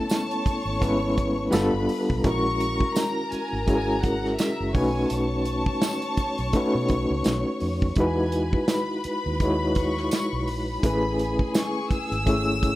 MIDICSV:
0, 0, Header, 1, 7, 480
1, 0, Start_track
1, 0, Key_signature, 4, "major"
1, 0, Tempo, 715990
1, 1508, Time_signature, 4, 2, 24, 8
1, 8551, End_track
2, 0, Start_track
2, 0, Title_t, "Violin section"
2, 0, Program_c, 0, 48
2, 0, Note_on_c, 0, 81, 98
2, 1043, Note_off_c, 0, 81, 0
2, 1514, Note_on_c, 0, 85, 113
2, 1964, Note_off_c, 0, 85, 0
2, 1975, Note_on_c, 0, 82, 101
2, 2215, Note_on_c, 0, 80, 92
2, 2221, Note_off_c, 0, 82, 0
2, 2440, Note_off_c, 0, 80, 0
2, 2448, Note_on_c, 0, 80, 94
2, 2680, Note_off_c, 0, 80, 0
2, 2686, Note_on_c, 0, 78, 96
2, 2931, Note_on_c, 0, 76, 92
2, 2937, Note_off_c, 0, 78, 0
2, 3162, Note_off_c, 0, 76, 0
2, 3170, Note_on_c, 0, 80, 84
2, 3406, Note_on_c, 0, 81, 98
2, 3418, Note_off_c, 0, 80, 0
2, 4855, Note_off_c, 0, 81, 0
2, 5359, Note_on_c, 0, 80, 81
2, 5805, Note_off_c, 0, 80, 0
2, 5843, Note_on_c, 0, 83, 85
2, 6074, Note_off_c, 0, 83, 0
2, 6087, Note_on_c, 0, 83, 87
2, 6529, Note_off_c, 0, 83, 0
2, 6553, Note_on_c, 0, 85, 100
2, 7029, Note_off_c, 0, 85, 0
2, 7031, Note_on_c, 0, 83, 102
2, 7748, Note_off_c, 0, 83, 0
2, 7752, Note_on_c, 0, 85, 98
2, 7972, Note_off_c, 0, 85, 0
2, 7992, Note_on_c, 0, 88, 114
2, 8551, Note_off_c, 0, 88, 0
2, 8551, End_track
3, 0, Start_track
3, 0, Title_t, "String section"
3, 0, Program_c, 1, 48
3, 65, Note_on_c, 1, 73, 87
3, 69, Note_on_c, 1, 85, 94
3, 1007, Note_off_c, 1, 73, 0
3, 1009, Note_off_c, 1, 85, 0
3, 1015, Note_on_c, 1, 83, 89
3, 1018, Note_on_c, 1, 71, 75
3, 1491, Note_off_c, 1, 83, 0
3, 1493, Note_off_c, 1, 71, 0
3, 1499, Note_on_c, 1, 70, 81
3, 1501, Note_on_c, 1, 82, 88
3, 3156, Note_off_c, 1, 70, 0
3, 3157, Note_off_c, 1, 82, 0
3, 3181, Note_on_c, 1, 73, 80
3, 3185, Note_on_c, 1, 85, 88
3, 5316, Note_off_c, 1, 73, 0
3, 5318, Note_off_c, 1, 85, 0
3, 5335, Note_on_c, 1, 71, 82
3, 5335, Note_on_c, 1, 83, 84
3, 7233, Note_off_c, 1, 71, 0
3, 7233, Note_off_c, 1, 83, 0
3, 7259, Note_on_c, 1, 80, 83
3, 7260, Note_on_c, 1, 68, 81
3, 8551, Note_off_c, 1, 68, 0
3, 8551, Note_off_c, 1, 80, 0
3, 8551, End_track
4, 0, Start_track
4, 0, Title_t, "Reed electric piano"
4, 0, Program_c, 2, 4
4, 0, Control_c, 2, 64, 127
4, 0, Note_on_c, 2, 57, 76
4, 0, Note_on_c, 2, 59, 65
4, 0, Note_on_c, 2, 61, 66
4, 0, Note_on_c, 2, 64, 65
4, 0, Note_on_c, 2, 69, 81
4, 213, Note_off_c, 2, 57, 0
4, 216, Note_off_c, 2, 59, 0
4, 218, Note_off_c, 2, 61, 0
4, 221, Note_off_c, 2, 64, 0
4, 223, Note_off_c, 2, 69, 0
4, 539, Note_on_c, 2, 56, 75
4, 543, Note_on_c, 2, 59, 77
4, 550, Note_on_c, 2, 61, 74
4, 552, Note_on_c, 2, 64, 69
4, 557, Note_on_c, 2, 71, 91
4, 1006, Note_off_c, 2, 59, 0
4, 1012, Note_on_c, 2, 55, 89
4, 1014, Note_on_c, 2, 59, 79
4, 1023, Note_on_c, 2, 62, 84
4, 1024, Note_off_c, 2, 56, 0
4, 1026, Note_on_c, 2, 65, 82
4, 1029, Note_off_c, 2, 61, 0
4, 1029, Note_on_c, 2, 69, 100
4, 1030, Note_off_c, 2, 64, 0
4, 1032, Note_off_c, 2, 71, 0
4, 1036, Control_c, 2, 64, 0
4, 1175, Control_c, 2, 64, 127
4, 1419, Note_off_c, 2, 55, 0
4, 1421, Note_off_c, 2, 59, 0
4, 1425, Note_off_c, 2, 62, 0
4, 1426, Note_off_c, 2, 65, 0
4, 1428, Note_off_c, 2, 69, 0
4, 1501, Note_on_c, 2, 61, 72
4, 1502, Note_on_c, 2, 56, 75
4, 1508, Note_on_c, 2, 64, 64
4, 1511, Note_on_c, 2, 66, 67
4, 1516, Control_c, 2, 64, 0
4, 1518, Note_on_c, 2, 70, 77
4, 1639, Control_c, 2, 64, 127
4, 2134, Note_off_c, 2, 61, 0
4, 2135, Note_off_c, 2, 56, 0
4, 2138, Note_off_c, 2, 64, 0
4, 2140, Note_off_c, 2, 66, 0
4, 2143, Note_off_c, 2, 70, 0
4, 2455, Note_on_c, 2, 56, 73
4, 2466, Note_on_c, 2, 61, 67
4, 2468, Note_on_c, 2, 64, 66
4, 2471, Note_on_c, 2, 66, 63
4, 2477, Note_on_c, 2, 68, 61
4, 2518, Note_on_c, 2, 70, 72
4, 2523, Note_off_c, 2, 68, 0
4, 3091, Note_off_c, 2, 56, 0
4, 3097, Note_off_c, 2, 61, 0
4, 3097, Note_off_c, 2, 64, 0
4, 3099, Note_off_c, 2, 66, 0
4, 3123, Note_off_c, 2, 70, 0
4, 3178, Note_on_c, 2, 57, 70
4, 3180, Note_on_c, 2, 61, 66
4, 3180, Note_on_c, 2, 63, 70
4, 3189, Note_on_c, 2, 66, 64
4, 3192, Note_on_c, 2, 71, 77
4, 3197, Control_c, 2, 64, 0
4, 3312, Control_c, 2, 64, 127
4, 3958, Note_off_c, 2, 57, 0
4, 3959, Note_off_c, 2, 61, 0
4, 3959, Note_off_c, 2, 63, 0
4, 3963, Note_off_c, 2, 66, 0
4, 3965, Note_off_c, 2, 71, 0
4, 4380, Note_on_c, 2, 57, 82
4, 4386, Note_on_c, 2, 61, 72
4, 4389, Note_on_c, 2, 63, 74
4, 4399, Note_on_c, 2, 66, 73
4, 4402, Note_on_c, 2, 71, 83
4, 5013, Note_off_c, 2, 57, 0
4, 5016, Note_off_c, 2, 61, 0
4, 5018, Note_off_c, 2, 63, 0
4, 5023, Note_off_c, 2, 66, 0
4, 5024, Note_off_c, 2, 71, 0
4, 5349, Note_on_c, 2, 56, 73
4, 5353, Control_c, 2, 64, 0
4, 5353, Note_on_c, 2, 63, 66
4, 5356, Note_on_c, 2, 64, 63
4, 5358, Note_on_c, 2, 66, 66
4, 5364, Note_on_c, 2, 71, 82
4, 5487, Control_c, 2, 64, 127
4, 5977, Note_off_c, 2, 56, 0
4, 5980, Note_off_c, 2, 63, 0
4, 5981, Note_off_c, 2, 64, 0
4, 5982, Note_off_c, 2, 66, 0
4, 5985, Note_off_c, 2, 71, 0
4, 6310, Note_on_c, 2, 56, 67
4, 6314, Note_on_c, 2, 64, 64
4, 6315, Note_on_c, 2, 63, 60
4, 6322, Note_on_c, 2, 66, 59
4, 6326, Note_on_c, 2, 73, 72
4, 6938, Note_off_c, 2, 56, 0
4, 6940, Note_off_c, 2, 63, 0
4, 6940, Note_off_c, 2, 64, 0
4, 6944, Note_off_c, 2, 66, 0
4, 6946, Note_off_c, 2, 73, 0
4, 7261, Note_on_c, 2, 57, 71
4, 7266, Note_on_c, 2, 61, 65
4, 7272, Note_on_c, 2, 64, 68
4, 7275, Control_c, 2, 64, 0
4, 7277, Note_on_c, 2, 68, 71
4, 7280, Note_on_c, 2, 71, 86
4, 7394, Control_c, 2, 64, 127
4, 7893, Note_off_c, 2, 57, 0
4, 7896, Note_off_c, 2, 61, 0
4, 7899, Note_off_c, 2, 64, 0
4, 7901, Note_off_c, 2, 68, 0
4, 7903, Note_off_c, 2, 71, 0
4, 8219, Note_on_c, 2, 57, 70
4, 8220, Note_on_c, 2, 61, 64
4, 8230, Note_on_c, 2, 64, 60
4, 8235, Note_on_c, 2, 68, 62
4, 8239, Note_on_c, 2, 73, 73
4, 8551, Note_off_c, 2, 57, 0
4, 8551, Note_off_c, 2, 61, 0
4, 8551, Note_off_c, 2, 64, 0
4, 8551, Note_off_c, 2, 68, 0
4, 8551, Note_off_c, 2, 73, 0
4, 8551, End_track
5, 0, Start_track
5, 0, Title_t, "Fingered electric bass"
5, 0, Program_c, 3, 33
5, 438, Note_on_c, 3, 32, 86
5, 997, Note_off_c, 3, 32, 0
5, 1025, Note_on_c, 3, 31, 95
5, 1137, Note_off_c, 3, 31, 0
5, 1164, Note_on_c, 3, 31, 86
5, 1246, Note_off_c, 3, 31, 0
5, 1406, Note_on_c, 3, 35, 88
5, 1487, Note_off_c, 3, 35, 0
5, 1501, Note_on_c, 3, 34, 100
5, 1886, Note_off_c, 3, 34, 0
5, 2365, Note_on_c, 3, 32, 90
5, 2919, Note_off_c, 3, 32, 0
5, 3086, Note_on_c, 3, 30, 77
5, 3166, Note_off_c, 3, 30, 0
5, 3183, Note_on_c, 3, 35, 103
5, 3375, Note_off_c, 3, 35, 0
5, 3425, Note_on_c, 3, 35, 99
5, 3808, Note_off_c, 3, 35, 0
5, 4282, Note_on_c, 3, 35, 89
5, 4364, Note_off_c, 3, 35, 0
5, 4523, Note_on_c, 3, 47, 101
5, 4604, Note_off_c, 3, 47, 0
5, 4624, Note_on_c, 3, 35, 77
5, 4736, Note_off_c, 3, 35, 0
5, 4763, Note_on_c, 3, 37, 85
5, 4844, Note_off_c, 3, 37, 0
5, 4867, Note_on_c, 3, 35, 96
5, 4978, Note_off_c, 3, 35, 0
5, 5106, Note_on_c, 3, 41, 77
5, 5297, Note_off_c, 3, 41, 0
5, 5342, Note_on_c, 3, 40, 102
5, 5725, Note_off_c, 3, 40, 0
5, 6207, Note_on_c, 3, 39, 91
5, 6760, Note_off_c, 3, 39, 0
5, 6923, Note_on_c, 3, 35, 75
5, 7027, Note_off_c, 3, 35, 0
5, 7027, Note_on_c, 3, 34, 86
5, 7217, Note_off_c, 3, 34, 0
5, 7260, Note_on_c, 3, 33, 100
5, 7645, Note_off_c, 3, 33, 0
5, 8122, Note_on_c, 3, 32, 96
5, 8551, Note_off_c, 3, 32, 0
5, 8551, End_track
6, 0, Start_track
6, 0, Title_t, "Muted fingered electric bass strokes"
6, 309, Note_on_c, 9, 29, 44
6, 376, Note_off_c, 9, 29, 0
6, 2227, Note_on_c, 9, 29, 43
6, 2294, Note_off_c, 9, 29, 0
6, 4139, Note_on_c, 9, 29, 45
6, 4206, Note_off_c, 9, 29, 0
6, 6066, Note_on_c, 9, 29, 45
6, 6133, Note_off_c, 9, 29, 0
6, 7985, Note_on_c, 9, 29, 45
6, 8052, Note_off_c, 9, 29, 0
6, 8551, End_track
7, 0, Start_track
7, 0, Title_t, "Drums"
7, 63, Note_on_c, 9, 54, 94
7, 75, Note_on_c, 9, 42, 93
7, 76, Note_on_c, 9, 38, 100
7, 130, Note_off_c, 9, 54, 0
7, 142, Note_off_c, 9, 42, 0
7, 143, Note_off_c, 9, 38, 0
7, 208, Note_on_c, 9, 42, 52
7, 275, Note_off_c, 9, 42, 0
7, 307, Note_on_c, 9, 36, 94
7, 312, Note_on_c, 9, 42, 64
7, 374, Note_off_c, 9, 36, 0
7, 379, Note_off_c, 9, 42, 0
7, 548, Note_on_c, 9, 36, 89
7, 552, Note_on_c, 9, 42, 77
7, 615, Note_off_c, 9, 36, 0
7, 619, Note_off_c, 9, 42, 0
7, 789, Note_on_c, 9, 36, 85
7, 789, Note_on_c, 9, 42, 71
7, 856, Note_off_c, 9, 36, 0
7, 856, Note_off_c, 9, 42, 0
7, 1021, Note_on_c, 9, 54, 80
7, 1024, Note_on_c, 9, 42, 91
7, 1034, Note_on_c, 9, 38, 89
7, 1088, Note_off_c, 9, 54, 0
7, 1091, Note_off_c, 9, 42, 0
7, 1101, Note_off_c, 9, 38, 0
7, 1266, Note_on_c, 9, 46, 55
7, 1333, Note_off_c, 9, 46, 0
7, 1407, Note_on_c, 9, 36, 82
7, 1474, Note_off_c, 9, 36, 0
7, 1502, Note_on_c, 9, 42, 85
7, 1504, Note_on_c, 9, 36, 100
7, 1569, Note_off_c, 9, 42, 0
7, 1571, Note_off_c, 9, 36, 0
7, 1746, Note_on_c, 9, 42, 68
7, 1813, Note_off_c, 9, 42, 0
7, 1880, Note_on_c, 9, 36, 90
7, 1947, Note_off_c, 9, 36, 0
7, 1981, Note_on_c, 9, 54, 93
7, 1987, Note_on_c, 9, 42, 95
7, 1988, Note_on_c, 9, 38, 104
7, 2048, Note_off_c, 9, 54, 0
7, 2054, Note_off_c, 9, 42, 0
7, 2055, Note_off_c, 9, 38, 0
7, 2225, Note_on_c, 9, 42, 65
7, 2292, Note_off_c, 9, 42, 0
7, 2463, Note_on_c, 9, 42, 80
7, 2465, Note_on_c, 9, 36, 91
7, 2530, Note_off_c, 9, 42, 0
7, 2532, Note_off_c, 9, 36, 0
7, 2704, Note_on_c, 9, 42, 74
7, 2706, Note_on_c, 9, 36, 82
7, 2771, Note_off_c, 9, 42, 0
7, 2773, Note_off_c, 9, 36, 0
7, 2850, Note_on_c, 9, 38, 32
7, 2917, Note_off_c, 9, 38, 0
7, 2940, Note_on_c, 9, 42, 102
7, 2941, Note_on_c, 9, 54, 82
7, 2950, Note_on_c, 9, 38, 95
7, 3007, Note_off_c, 9, 42, 0
7, 3008, Note_off_c, 9, 54, 0
7, 3017, Note_off_c, 9, 38, 0
7, 3181, Note_on_c, 9, 46, 60
7, 3182, Note_on_c, 9, 36, 97
7, 3248, Note_off_c, 9, 46, 0
7, 3249, Note_off_c, 9, 36, 0
7, 3418, Note_on_c, 9, 42, 93
7, 3485, Note_off_c, 9, 42, 0
7, 3656, Note_on_c, 9, 42, 67
7, 3723, Note_off_c, 9, 42, 0
7, 3796, Note_on_c, 9, 36, 90
7, 3863, Note_off_c, 9, 36, 0
7, 3899, Note_on_c, 9, 38, 108
7, 3899, Note_on_c, 9, 42, 95
7, 3907, Note_on_c, 9, 54, 96
7, 3966, Note_off_c, 9, 38, 0
7, 3966, Note_off_c, 9, 42, 0
7, 3974, Note_off_c, 9, 54, 0
7, 4035, Note_on_c, 9, 42, 54
7, 4102, Note_off_c, 9, 42, 0
7, 4138, Note_on_c, 9, 42, 67
7, 4139, Note_on_c, 9, 36, 91
7, 4205, Note_off_c, 9, 42, 0
7, 4206, Note_off_c, 9, 36, 0
7, 4276, Note_on_c, 9, 42, 45
7, 4343, Note_off_c, 9, 42, 0
7, 4377, Note_on_c, 9, 42, 81
7, 4381, Note_on_c, 9, 36, 91
7, 4444, Note_off_c, 9, 42, 0
7, 4448, Note_off_c, 9, 36, 0
7, 4616, Note_on_c, 9, 42, 73
7, 4624, Note_on_c, 9, 36, 79
7, 4683, Note_off_c, 9, 42, 0
7, 4691, Note_off_c, 9, 36, 0
7, 4856, Note_on_c, 9, 42, 94
7, 4863, Note_on_c, 9, 54, 81
7, 4866, Note_on_c, 9, 38, 98
7, 4923, Note_off_c, 9, 42, 0
7, 4931, Note_off_c, 9, 54, 0
7, 4933, Note_off_c, 9, 38, 0
7, 5097, Note_on_c, 9, 46, 57
7, 5164, Note_off_c, 9, 46, 0
7, 5243, Note_on_c, 9, 36, 84
7, 5310, Note_off_c, 9, 36, 0
7, 5334, Note_on_c, 9, 42, 90
7, 5340, Note_on_c, 9, 36, 99
7, 5401, Note_off_c, 9, 42, 0
7, 5407, Note_off_c, 9, 36, 0
7, 5578, Note_on_c, 9, 42, 66
7, 5646, Note_off_c, 9, 42, 0
7, 5718, Note_on_c, 9, 36, 90
7, 5785, Note_off_c, 9, 36, 0
7, 5818, Note_on_c, 9, 38, 107
7, 5818, Note_on_c, 9, 42, 89
7, 5825, Note_on_c, 9, 54, 95
7, 5885, Note_off_c, 9, 38, 0
7, 5885, Note_off_c, 9, 42, 0
7, 5892, Note_off_c, 9, 54, 0
7, 6060, Note_on_c, 9, 42, 68
7, 6127, Note_off_c, 9, 42, 0
7, 6302, Note_on_c, 9, 42, 72
7, 6303, Note_on_c, 9, 36, 89
7, 6369, Note_off_c, 9, 42, 0
7, 6370, Note_off_c, 9, 36, 0
7, 6537, Note_on_c, 9, 42, 71
7, 6544, Note_on_c, 9, 36, 90
7, 6604, Note_off_c, 9, 42, 0
7, 6611, Note_off_c, 9, 36, 0
7, 6685, Note_on_c, 9, 38, 33
7, 6752, Note_off_c, 9, 38, 0
7, 6780, Note_on_c, 9, 42, 93
7, 6780, Note_on_c, 9, 54, 80
7, 6790, Note_on_c, 9, 38, 91
7, 6847, Note_off_c, 9, 42, 0
7, 6847, Note_off_c, 9, 54, 0
7, 6857, Note_off_c, 9, 38, 0
7, 7023, Note_on_c, 9, 46, 59
7, 7090, Note_off_c, 9, 46, 0
7, 7262, Note_on_c, 9, 36, 103
7, 7264, Note_on_c, 9, 42, 91
7, 7329, Note_off_c, 9, 36, 0
7, 7331, Note_off_c, 9, 42, 0
7, 7503, Note_on_c, 9, 42, 72
7, 7570, Note_off_c, 9, 42, 0
7, 7637, Note_on_c, 9, 36, 89
7, 7705, Note_off_c, 9, 36, 0
7, 7739, Note_on_c, 9, 54, 99
7, 7744, Note_on_c, 9, 38, 110
7, 7744, Note_on_c, 9, 42, 95
7, 7806, Note_off_c, 9, 54, 0
7, 7811, Note_off_c, 9, 38, 0
7, 7811, Note_off_c, 9, 42, 0
7, 7982, Note_on_c, 9, 36, 91
7, 7984, Note_on_c, 9, 42, 65
7, 8049, Note_off_c, 9, 36, 0
7, 8051, Note_off_c, 9, 42, 0
7, 8125, Note_on_c, 9, 42, 51
7, 8192, Note_off_c, 9, 42, 0
7, 8224, Note_on_c, 9, 36, 94
7, 8224, Note_on_c, 9, 42, 78
7, 8291, Note_off_c, 9, 36, 0
7, 8291, Note_off_c, 9, 42, 0
7, 8466, Note_on_c, 9, 36, 90
7, 8466, Note_on_c, 9, 42, 73
7, 8533, Note_off_c, 9, 36, 0
7, 8533, Note_off_c, 9, 42, 0
7, 8551, End_track
0, 0, End_of_file